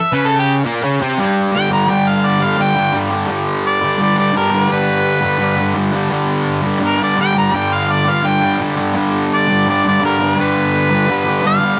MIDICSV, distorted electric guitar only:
0, 0, Header, 1, 2, 480
1, 0, Start_track
1, 0, Key_signature, 1, "major"
1, 0, Tempo, 353774
1, 168, Time_signature, 4, 2, 24, 8
1, 16006, End_track
2, 0, Start_track
2, 0, Title_t, "Distorted electric guitar"
2, 0, Program_c, 0, 30
2, 169, Note_on_c, 0, 49, 110
2, 178, Note_on_c, 0, 61, 106
2, 876, Note_off_c, 0, 49, 0
2, 881, Note_off_c, 0, 61, 0
2, 886, Note_on_c, 0, 46, 81
2, 899, Note_on_c, 0, 58, 100
2, 1116, Note_off_c, 0, 46, 0
2, 1122, Note_off_c, 0, 58, 0
2, 1124, Note_on_c, 0, 49, 86
2, 1141, Note_on_c, 0, 61, 104
2, 1354, Note_off_c, 0, 49, 0
2, 1363, Note_off_c, 0, 61, 0
2, 1366, Note_on_c, 0, 48, 96
2, 1384, Note_on_c, 0, 60, 113
2, 1594, Note_off_c, 0, 48, 0
2, 1600, Note_on_c, 0, 43, 90
2, 1603, Note_off_c, 0, 60, 0
2, 1616, Note_on_c, 0, 55, 94
2, 2047, Note_off_c, 0, 43, 0
2, 2063, Note_on_c, 0, 43, 96
2, 2078, Note_off_c, 0, 55, 0
2, 2101, Note_on_c, 0, 50, 90
2, 2122, Note_on_c, 0, 55, 110
2, 2308, Note_off_c, 0, 55, 0
2, 2314, Note_on_c, 0, 55, 73
2, 2352, Note_off_c, 0, 50, 0
2, 2369, Note_on_c, 0, 50, 59
2, 2539, Note_off_c, 0, 43, 0
2, 2545, Note_on_c, 0, 43, 72
2, 2553, Note_off_c, 0, 50, 0
2, 2570, Note_on_c, 0, 50, 79
2, 2581, Note_off_c, 0, 55, 0
2, 2587, Note_on_c, 0, 55, 79
2, 3248, Note_off_c, 0, 55, 0
2, 3253, Note_on_c, 0, 55, 76
2, 3301, Note_off_c, 0, 50, 0
2, 3318, Note_on_c, 0, 50, 59
2, 3483, Note_off_c, 0, 43, 0
2, 3488, Note_on_c, 0, 43, 88
2, 3498, Note_off_c, 0, 50, 0
2, 3514, Note_on_c, 0, 50, 99
2, 3531, Note_off_c, 0, 55, 0
2, 3536, Note_on_c, 0, 55, 100
2, 3730, Note_off_c, 0, 55, 0
2, 3736, Note_on_c, 0, 55, 69
2, 3766, Note_off_c, 0, 50, 0
2, 3782, Note_on_c, 0, 50, 61
2, 3969, Note_off_c, 0, 43, 0
2, 3975, Note_on_c, 0, 43, 95
2, 3992, Note_off_c, 0, 50, 0
2, 4008, Note_on_c, 0, 50, 96
2, 4023, Note_off_c, 0, 55, 0
2, 4028, Note_on_c, 0, 55, 110
2, 4216, Note_off_c, 0, 55, 0
2, 4221, Note_on_c, 0, 55, 79
2, 4253, Note_off_c, 0, 50, 0
2, 4269, Note_on_c, 0, 50, 62
2, 4433, Note_off_c, 0, 43, 0
2, 4438, Note_on_c, 0, 43, 79
2, 4447, Note_off_c, 0, 50, 0
2, 4463, Note_on_c, 0, 50, 75
2, 4487, Note_off_c, 0, 55, 0
2, 4492, Note_on_c, 0, 55, 82
2, 5168, Note_off_c, 0, 55, 0
2, 5174, Note_on_c, 0, 55, 75
2, 5208, Note_off_c, 0, 50, 0
2, 5224, Note_on_c, 0, 50, 64
2, 5402, Note_off_c, 0, 43, 0
2, 5408, Note_on_c, 0, 43, 87
2, 5427, Note_off_c, 0, 50, 0
2, 5443, Note_on_c, 0, 50, 92
2, 5457, Note_off_c, 0, 55, 0
2, 5463, Note_on_c, 0, 55, 104
2, 5645, Note_off_c, 0, 55, 0
2, 5650, Note_on_c, 0, 55, 70
2, 5688, Note_off_c, 0, 50, 0
2, 5704, Note_on_c, 0, 50, 59
2, 5879, Note_off_c, 0, 43, 0
2, 5885, Note_on_c, 0, 43, 102
2, 5898, Note_off_c, 0, 50, 0
2, 5914, Note_on_c, 0, 50, 108
2, 5931, Note_off_c, 0, 55, 0
2, 5936, Note_on_c, 0, 55, 108
2, 6113, Note_off_c, 0, 55, 0
2, 6119, Note_on_c, 0, 55, 78
2, 6153, Note_off_c, 0, 50, 0
2, 6169, Note_on_c, 0, 50, 63
2, 6359, Note_off_c, 0, 43, 0
2, 6364, Note_on_c, 0, 43, 75
2, 6377, Note_off_c, 0, 50, 0
2, 6393, Note_on_c, 0, 50, 82
2, 6411, Note_off_c, 0, 55, 0
2, 6416, Note_on_c, 0, 55, 84
2, 7067, Note_off_c, 0, 55, 0
2, 7073, Note_on_c, 0, 55, 80
2, 7109, Note_off_c, 0, 50, 0
2, 7126, Note_on_c, 0, 50, 66
2, 7302, Note_off_c, 0, 43, 0
2, 7307, Note_on_c, 0, 43, 101
2, 7316, Note_off_c, 0, 50, 0
2, 7332, Note_on_c, 0, 50, 95
2, 7361, Note_off_c, 0, 55, 0
2, 7366, Note_on_c, 0, 55, 88
2, 7560, Note_off_c, 0, 55, 0
2, 7566, Note_on_c, 0, 55, 68
2, 7601, Note_off_c, 0, 50, 0
2, 7617, Note_on_c, 0, 50, 59
2, 7794, Note_off_c, 0, 43, 0
2, 7800, Note_on_c, 0, 43, 96
2, 7810, Note_off_c, 0, 50, 0
2, 7826, Note_on_c, 0, 50, 103
2, 7836, Note_off_c, 0, 55, 0
2, 7841, Note_on_c, 0, 55, 107
2, 8033, Note_off_c, 0, 55, 0
2, 8039, Note_on_c, 0, 55, 71
2, 8076, Note_off_c, 0, 50, 0
2, 8092, Note_on_c, 0, 50, 64
2, 8270, Note_off_c, 0, 43, 0
2, 8276, Note_on_c, 0, 43, 75
2, 8281, Note_off_c, 0, 50, 0
2, 8297, Note_on_c, 0, 50, 82
2, 8316, Note_off_c, 0, 55, 0
2, 8321, Note_on_c, 0, 55, 78
2, 8984, Note_off_c, 0, 55, 0
2, 8989, Note_on_c, 0, 55, 77
2, 9023, Note_off_c, 0, 50, 0
2, 9039, Note_on_c, 0, 50, 54
2, 9209, Note_off_c, 0, 43, 0
2, 9214, Note_on_c, 0, 43, 85
2, 9231, Note_off_c, 0, 50, 0
2, 9247, Note_on_c, 0, 50, 89
2, 9261, Note_off_c, 0, 55, 0
2, 9267, Note_on_c, 0, 55, 90
2, 9470, Note_off_c, 0, 55, 0
2, 9476, Note_on_c, 0, 55, 69
2, 9514, Note_off_c, 0, 50, 0
2, 9530, Note_on_c, 0, 50, 55
2, 9713, Note_off_c, 0, 43, 0
2, 9718, Note_on_c, 0, 43, 95
2, 9727, Note_off_c, 0, 50, 0
2, 9743, Note_on_c, 0, 50, 96
2, 9764, Note_off_c, 0, 55, 0
2, 9769, Note_on_c, 0, 55, 97
2, 9967, Note_off_c, 0, 55, 0
2, 9973, Note_on_c, 0, 55, 71
2, 10005, Note_off_c, 0, 50, 0
2, 10021, Note_on_c, 0, 50, 60
2, 10198, Note_off_c, 0, 43, 0
2, 10203, Note_on_c, 0, 43, 81
2, 10216, Note_off_c, 0, 50, 0
2, 10232, Note_on_c, 0, 50, 82
2, 10252, Note_off_c, 0, 55, 0
2, 10257, Note_on_c, 0, 55, 77
2, 10938, Note_off_c, 0, 55, 0
2, 10944, Note_on_c, 0, 55, 72
2, 10980, Note_off_c, 0, 50, 0
2, 10996, Note_on_c, 0, 50, 62
2, 11182, Note_off_c, 0, 43, 0
2, 11187, Note_on_c, 0, 43, 88
2, 11193, Note_off_c, 0, 50, 0
2, 11209, Note_on_c, 0, 50, 100
2, 11230, Note_off_c, 0, 55, 0
2, 11236, Note_on_c, 0, 55, 105
2, 11407, Note_off_c, 0, 55, 0
2, 11412, Note_on_c, 0, 55, 69
2, 11446, Note_off_c, 0, 50, 0
2, 11463, Note_on_c, 0, 50, 54
2, 11656, Note_off_c, 0, 43, 0
2, 11662, Note_on_c, 0, 43, 96
2, 11676, Note_off_c, 0, 50, 0
2, 11692, Note_on_c, 0, 50, 96
2, 11705, Note_off_c, 0, 55, 0
2, 11711, Note_on_c, 0, 55, 115
2, 11889, Note_off_c, 0, 55, 0
2, 11895, Note_on_c, 0, 55, 75
2, 11930, Note_off_c, 0, 50, 0
2, 11946, Note_on_c, 0, 50, 57
2, 12133, Note_off_c, 0, 43, 0
2, 12138, Note_on_c, 0, 43, 86
2, 12145, Note_off_c, 0, 50, 0
2, 12161, Note_on_c, 0, 50, 78
2, 12183, Note_off_c, 0, 55, 0
2, 12189, Note_on_c, 0, 55, 91
2, 12854, Note_off_c, 0, 55, 0
2, 12860, Note_on_c, 0, 55, 76
2, 12890, Note_off_c, 0, 50, 0
2, 12907, Note_on_c, 0, 50, 61
2, 13110, Note_off_c, 0, 43, 0
2, 13116, Note_on_c, 0, 43, 99
2, 13117, Note_off_c, 0, 50, 0
2, 13133, Note_on_c, 0, 50, 97
2, 13156, Note_off_c, 0, 55, 0
2, 13162, Note_on_c, 0, 55, 97
2, 13351, Note_off_c, 0, 55, 0
2, 13357, Note_on_c, 0, 55, 71
2, 13396, Note_off_c, 0, 50, 0
2, 13413, Note_on_c, 0, 50, 67
2, 13573, Note_off_c, 0, 43, 0
2, 13578, Note_on_c, 0, 43, 93
2, 13590, Note_off_c, 0, 50, 0
2, 13606, Note_on_c, 0, 50, 105
2, 13631, Note_off_c, 0, 55, 0
2, 13636, Note_on_c, 0, 55, 97
2, 13823, Note_off_c, 0, 55, 0
2, 13828, Note_on_c, 0, 55, 83
2, 13861, Note_off_c, 0, 50, 0
2, 13877, Note_on_c, 0, 50, 58
2, 14052, Note_off_c, 0, 43, 0
2, 14058, Note_on_c, 0, 43, 74
2, 14074, Note_off_c, 0, 50, 0
2, 14090, Note_on_c, 0, 50, 83
2, 14103, Note_off_c, 0, 55, 0
2, 14108, Note_on_c, 0, 55, 80
2, 14791, Note_off_c, 0, 55, 0
2, 14796, Note_on_c, 0, 55, 69
2, 14831, Note_off_c, 0, 50, 0
2, 14847, Note_on_c, 0, 50, 62
2, 15015, Note_off_c, 0, 43, 0
2, 15020, Note_on_c, 0, 43, 89
2, 15043, Note_off_c, 0, 50, 0
2, 15059, Note_on_c, 0, 50, 101
2, 15075, Note_off_c, 0, 55, 0
2, 15080, Note_on_c, 0, 55, 96
2, 15257, Note_off_c, 0, 55, 0
2, 15263, Note_on_c, 0, 55, 66
2, 15312, Note_off_c, 0, 50, 0
2, 15328, Note_on_c, 0, 50, 65
2, 15502, Note_off_c, 0, 43, 0
2, 15508, Note_on_c, 0, 43, 91
2, 15517, Note_off_c, 0, 50, 0
2, 15533, Note_on_c, 0, 50, 106
2, 15539, Note_off_c, 0, 55, 0
2, 15555, Note_on_c, 0, 55, 101
2, 15729, Note_off_c, 0, 55, 0
2, 15745, Note_on_c, 0, 55, 80
2, 15780, Note_off_c, 0, 50, 0
2, 15796, Note_on_c, 0, 50, 58
2, 15967, Note_off_c, 0, 43, 0
2, 15997, Note_off_c, 0, 50, 0
2, 16006, Note_off_c, 0, 55, 0
2, 16006, End_track
0, 0, End_of_file